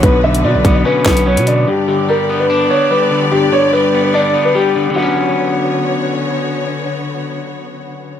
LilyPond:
<<
  \new Staff \with { instrumentName = "Grand piano" } { \time 4/4 \key b \minor \tempo 4 = 146 b'8 e''8 d''8. d''16 b'4 cis''8 d''8 | g'8 g'8 ais'8. b'8. cis''8 b'4 | g'8 cis''8 b'8. b'16 d''8. b'16 g'4 | fis'2. r4 |
r1 | }
  \new Staff \with { instrumentName = "String section" } { \time 4/4 \key b \minor <d b fis' b'>1 | <d b g' d''>1~ | <d b g' d''>1 | <d b fis' cis''>1~ |
<d b fis' cis''>1 | }
  \new Staff \with { instrumentName = "Clean electric guitar" } { \clef bass \time 4/4 \key b \minor <b, d fis b cis'>8 d8 fis8 b8 cis'8 b8 fis8 d8 | g,8 d8 g8 b8 d'8 b8 g8 d8 | g,8 d8 g8 b8 d'8 b8 g8 d8 | <d fis b cis'>1~ |
<d fis b cis'>1 | }
  \new Staff \with { instrumentName = "808-style bass" } { \clef bass \time 4/4 \key b \minor b,,4 b,16 b,,16 b,,8 r8 b,,8. b,8. | r1 | r1 | r1 |
r1 | }
  \new DrumStaff \with { instrumentName = "Drums" } \drummode { \time 4/4 <hh bd>8. hh16 r8 <hh bd>8 r8 <hc bd sn>16 hh16 r16 hh16 hh8 | r4 r4 r4 r4 | r4 r4 r4 r4 | r4 r4 r4 r4 |
r4 r4 r4 r4 | }
>>